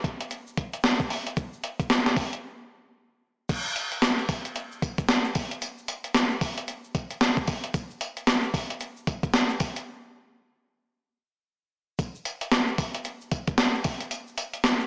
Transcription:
0.04 kick, closed hi-hat
0.20 closed hi-hat, shaker
0.31 closed hi-hat, shaker
0.47 shaker
0.57 kick, closed hi-hat
0.73 closed hi-hat, shaker
0.84 snare, closed hi-hat, shaker
1.00 kick, shaker
1.10 open hi-hat
1.26 closed hi-hat, shaker
1.37 kick, closed hi-hat, shaker
1.53 shaker
1.63 closed hi-hat, shaker
1.80 kick, closed hi-hat, shaker
1.90 snare, closed hi-hat, shaker
2.06 snare, shaker
2.17 kick, open hi-hat
2.33 closed hi-hat, shaker
3.49 kick, closed hi-hat, crash, tambourine, shaker
3.66 shaker
3.76 closed hi-hat, tambourine, shaker
3.92 closed hi-hat, shaker
4.02 snare, closed hi-hat, tambourine, shaker
4.19 shaker
4.29 kick, open hi-hat, tambourine
4.45 closed hi-hat, shaker
4.56 closed hi-hat, shaker
4.72 shaker
4.82 kick, closed hi-hat, tambourine
4.98 kick, closed hi-hat, shaker
5.08 snare, closed hi-hat, tambourine, shaker
5.25 shaker
5.35 kick, open hi-hat, tambourine
5.51 closed hi-hat, shaker
5.62 closed hi-hat, tambourine, shaker
5.78 shaker
5.88 closed hi-hat, tambourine, shaker
6.04 closed hi-hat, shaker
6.14 snare, closed hi-hat, tambourine, shaker
6.31 shaker
6.41 kick, open hi-hat, tambourine
6.57 closed hi-hat, shaker
6.68 closed hi-hat, shaker
6.84 shaker
6.95 kick, closed hi-hat, tambourine
7.10 closed hi-hat, shaker
7.21 snare, closed hi-hat, tambourine, shaker
7.37 kick, shaker
7.47 kick, open hi-hat, tambourine
7.64 closed hi-hat, shaker
7.74 kick, closed hi-hat, tambourine, shaker
7.90 shaker
8.00 closed hi-hat, tambourine, shaker
8.17 closed hi-hat, shaker
8.27 snare, closed hi-hat, tambourine, shaker
8.43 shaker
8.54 kick, open hi-hat, tambourine
8.70 closed hi-hat, shaker
8.80 closed hi-hat, shaker
8.97 shaker
9.07 kick, closed hi-hat, tambourine
9.23 kick, closed hi-hat, shaker
9.33 snare, closed hi-hat, tambourine, shaker
9.49 shaker
9.60 kick, open hi-hat, tambourine
9.76 closed hi-hat, shaker
11.99 kick, closed hi-hat, tambourine, shaker
12.15 shaker
12.25 closed hi-hat, tambourine, shaker
12.41 closed hi-hat, shaker
12.52 snare, closed hi-hat, tambourine, shaker
12.68 shaker
12.78 kick, open hi-hat, tambourine
12.94 closed hi-hat, shaker
13.05 closed hi-hat, shaker
13.21 shaker
13.31 kick, closed hi-hat, tambourine
13.47 kick, closed hi-hat, shaker
13.58 snare, closed hi-hat, tambourine, shaker
13.74 shaker
13.84 kick, open hi-hat, tambourine
14.01 closed hi-hat, shaker
14.11 closed hi-hat, tambourine, shaker
14.27 shaker
14.37 closed hi-hat, tambourine, shaker
14.54 closed hi-hat, shaker
14.64 snare, closed hi-hat, tambourine, shaker
14.80 shaker

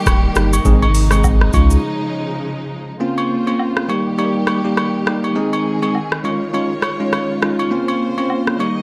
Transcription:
Already playing: D#3 G3 A#3 G4
0.06 D#1, kick, cross-stick, high agogo, shaker
0.35 G1 G3 A#3 D#4 G4, cross-stick, shaker
0.53 high agogo, shaker
0.65 G#1 C3 G#3 C4 D#4 G#4, kick, shaker
0.82 high agogo
0.95 open hi-hat, shaker
1.11 G#3 C4 D#4 G#4, cross-stick, high agogo, shaker
1.24 kick, low woodblock, shaker
1.41 cross-stick
1.53 C#2 C#3 F3 G#3 C#4 D#4 F4, kick, high agogo, shaker
1.70 shaker
3.00 C#3 A#3 C4 C#4 F4 C5
3.18 high agogo
3.47 A#3 C4 C#4 F4, high agogo
3.59 low woodblock
3.77 cross-stick
3.88 D#3 G3 A#3 D#4 G4, high agogo
4.18 G3 A#3 D#4 G4, high agogo
4.47 cross-stick, high agogo
4.64 G3 A#3 D#4 G4
4.77 cross-stick, high agogo
5.06 G3 A#3 D#4 G4, cross-stick
5.24 high agogo
5.35 G#3 C4 D#4 G#4
5.53 high agogo
5.82 G#3 C4 D#4 G#4, high agogo
5.95 low woodblock
6.12 cross-stick
6.24 G#3 C#4 D#4 F4 C#5, high agogo
6.53 G#3 C#4 D#4 F4, high agogo
6.82 cross-stick, high agogo
7.00 G#3 C#4 D#4 F4
7.13 cross-stick, high agogo
7.42 G#3 C#4 D#4 F4, cross-stick
7.59 high agogo
7.71 C#3 A#3 C4 C#4 F4 C5
7.88 high agogo
8.17 A#3 C4 C#4 F4, high agogo
8.30 low woodblock
8.47 cross-stick
8.59 D#3 G3 A#3 D#4 G4 D#5, high agogo

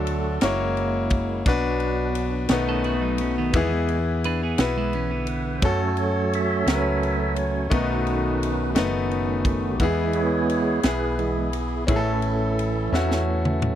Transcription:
Already playing: D2 D3 F#3 A3 D4 F#4 A4
0.07 ride
0.41 F#1 G#3 A#3 C#4 E4 F#4 C#5, snare, ride
0.77 ride
1.10 kick, ride
1.45 B1 B2 F#3 B3 D4 F#4 B4, kick, ride
1.80 ride
2.15 ride
2.48 B1 B2 D#3 A3 B3 C#4 D#4, snare, ride
2.52 F#4 B4
2.69 C#4 A4
2.84 A3 F#4, ride
3.01 F#3 D#4
3.18 C#4, ride
3.38 D#3 B3
3.51 E2 E3 G#3 B3, kick, ride
3.55 E3 E4 G#4
3.88 ride
4.24 D4 B4, ride
4.43 B3 G#4
4.58 B1 B3 E4 F#4 B4, snare, ride
4.77 G#3 E4
4.93 E3 C#4, ride
5.11 D3 B3
5.27 B4, ride
5.58 F#2 C5, ride
5.62 F#3 A3 C#4 F#4 A4 C#5, kick
5.97 ride
6.33 A4 C#5 E5, ride
6.66 C#2 C#4 F#4 A#4, snare, ride
6.75 B4
7.01 E5, ride
7.35 C#5, ride
7.69 B1 B2 D#3 A3 B3 C#4 D#4 F#4 B4, kick, ride
8.07 ride
8.43 ride
8.75 F#1 A3 B3 D#4 F#4 B4, snare, ride
9.11 ride
9.45 D#3 A3 C#4 F#4, kick, ride
9.71 G4
9.79 E2 E3 G#3 B3 E4 G#4, kick, ride
10.13 E4 G#4 C#5, ride
10.49 ride
10.83 B1 B3 E4 G#4 B4, snare, ride
11.18 E3 G#3 B3 E4 G#4, ride
11.53 ride
11.87 A1 A2 E3 A3 C#4 E4 G#4 A4, kick, ride
11.96 A4
12.22 ride
12.59 ride
12.92 E2 C#4 E4 F#4, snare
13.11 snare
13.45 mid tom
13.62 mid tom

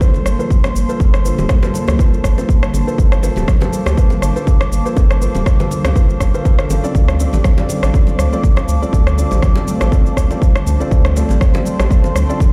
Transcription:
Already playing: A#3 F5 A5 C6
0.01 A#3 F4 A4 C5, kick, shaker
0.14 low bongo, high conga, shaker
0.25 G1 A#3, cross-stick, shaker
0.39 F3 A#3 F4 A4 C5, shaker
0.50 G3, kick, shaker
0.64 cross-stick, low bongo, shaker
0.75 G1, shaker
0.89 G3 A#3 F4 A4 C5, shaker
1.00 G1 G3, kick, low bongo, shaker
1.14 D3, cross-stick, shaker
1.24 A#3 D4 F4 A4 C5, shaker
1.38 D1, high bongo, high conga, low conga, shaker
1.49 G3, kick, cross-stick, low bongo, shaker
1.63 A#3 F4 A4 C5, high bongo, high conga, low conga, shaker
1.74 A#3, high conga, low conga, shaker
1.88 D2 F3, cross-stick, high bongo, low bongo, shaker
1.99 G3 A#3 F4 A4 C5, kick, shaker
2.14 shaker
2.24 G1, kick, cross-stick, shaker
2.37 G3 A#3 F4 A4 C5, low bongo, shaker
2.49 G3, kick, shaker
2.62 D3, cross-stick, shaker
2.73 G1 D4, low bongo, shaker
2.87 A#3 F4 A4 C5, shaker
2.98 G1 G3 D6, kick, shaker
3.12 cross-stick, shaker
3.23 A#3 F4 A4 C5, low bongo, shaker
3.36 D1 F3, high bongo, high conga, low conga, shaker
3.48 G3, kick, cross-stick, shaker
3.61 A#3 F4 A4 C5, high bongo, low bongo, high conga, low conga, shaker
3.72 high conga, shaker
3.86 D2 G3, cross-stick, high bongo, shaker
3.97 A#3 F4 A4 C5, kick, shaker
4.10 D3, low bongo, high conga, shaker
4.22 G1 D4, cross-stick, shaker
4.36 A#3 F4 A4 C5, shaker
4.47 G3, kick, low bongo, shaker
4.61 cross-stick, shaker
4.71 G1 A#3, shaker
4.85 F3 A#3 F4 A4 C5, shaker
4.96 G1 G3, kick, low bongo, shaker
5.11 cross-stick, shaker
5.21 A#3 F4 A4 C5, shaker
5.35 D1 G3, high bongo, low bongo, high conga, low conga, shaker
5.46 G3, kick, cross-stick, shaker
5.59 D3 A#3 F4 A4 C5, high bongo, high conga, low conga, shaker
5.70 D4, high conga, low conga, shaker
5.84 D2, cross-stick, high bongo, low bongo, low conga, shaker
5.95 G3 A#3 F4 A4 C5, kick, shaker
6.10 shaker
6.20 G1 G3, kick, cross-stick, low bongo, shaker
6.34 D3 A#3 F4 A4 C5, shaker
6.45 A#3 D4 F4 A4 C5, kick, shaker
6.59 cross-stick, shaker
6.70 G1, low bongo, high conga, shaker
6.84 C4 D4 F4 A4 D5, shaker
6.95 D2 G3 C5 A5 D6, kick, shaker
7.08 cross-stick, shaker
7.19 C4 F4 A4 D5, low bongo, shaker
7.33 A1 G3, high bongo, high conga, low conga, shaker
7.44 G3, kick, cross-stick, shaker
7.58 D3 C4 F4 A4 D5, high bongo, high conga, low conga, shaker
7.69 D4, low bongo, high conga, shaker
7.83 A1, cross-stick, high bongo, shaker
7.94 G3 C4 F4 A4 D5, kick, shaker
8.07 low bongo, high conga, shaker
8.19 D2 A3, cross-stick, shaker
8.32 F3 C4 F4 A4 D5, shaker
8.43 kick, shaker
8.56 cross-stick, low bongo, shaker
8.68 D2, shaker
8.82 G3 C4 F4 A4 D5, shaker
8.93 D2 G3, kick, low bongo, shaker
9.06 D3, cross-stick, shaker
9.17 C4 D4 F4 A4 D5, shaker
9.31 A1, high bongo, high conga, low conga, shaker
9.42 G3, kick, cross-stick, low bongo, shaker
9.56 C4 F4 A4 D5, high bongo, high conga, low conga, shaker
9.67 A3, high conga, low conga, shaker
9.81 A1 F3, cross-stick, high bongo, low bongo, shaker
9.92 G3 C4 F4 A4 D5, kick, shaker
10.06 shaker
10.17 D2, kick, cross-stick, shaker
10.30 G3 C4 F4 A4 D5, low bongo, shaker
10.42 G3, kick, shaker
10.55 D3, cross-stick, shaker
10.66 D2 D4, low bongo, shaker
10.80 C4 F4 A4 D5, shaker
10.91 D2 G3 C6, kick, shaker
11.05 cross-stick, shaker
11.16 A3 C4 F4 A4 D5, low bongo, shaker
11.29 A1 F3, high bongo, high conga, low conga, shaker
11.40 G3, kick, cross-stick, shaker
11.54 C4 F4 A4 D5, high bongo, low bongo, high conga, low conga, shaker
11.65 high conga, shaker
11.79 A1 G3, cross-stick, high bongo, shaker
11.90 G3 C4 F4 A4 D5, kick, shaker
12.04 D3, low bongo, high conga, shaker
12.15 D2 D4, cross-stick, shaker
12.29 C4 F4 A4 D5, shaker
12.40 G3, kick, low bongo, shaker

